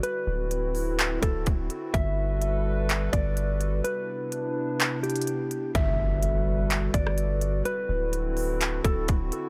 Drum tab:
HH |x-------x---o---x---x---x---x---|x-------x-------x---x---x---x---|x-------x-------x---xxxxx---x---|x-------x-------x---x---x---x---|
CP |----------------x---------------|----------------x---------------|----------------x---------------|----------------x---------------|
SD |--------------------------------|--------------------------------|--------------------------------|----------------------r---------|
BD |--------------------o---o-------|o-------------------o-----------|--------------------------------|o-------------------o-----------|

HH |x-------x---o---x---x---x---x---|
CP |----------------x---------------|
SD |--------------------------------|
BD |--------------------o---o-------|